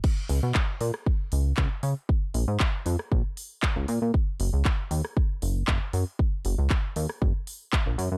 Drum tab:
CC |x---------------|----------------|----------------|----------------|
HH |--o---o---o---o-|--o---o---o---o-|--o---o---o---o-|--o---o---o---o-|
CP |----x-------x---|----x-------x---|----x-------x---|----x-------x---|
SD |-------r--------|-------r--------|-------r--------|-------r--------|
BD |o---o---o---o---|o---o---o---o---|o---o---o---o---|o---o---o---o---|